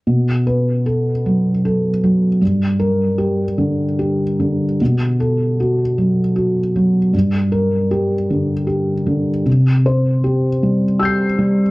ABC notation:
X:1
M:3/4
L:1/8
Q:1/4=77
K:Bphr
V:1 name="Felt piano"
z B2 z3 | z _B2 z3 | z A2 z3 | z _B2 z3 |
z c2 z [e'g'c'']2 |]
V:2 name="Felt piano" clef=bass
B,,2 A F, A F, | G,,2 G D, G D, | B,,2 F F, F F, | G,,2 G D, G D, |
C,2 G G, G G, |]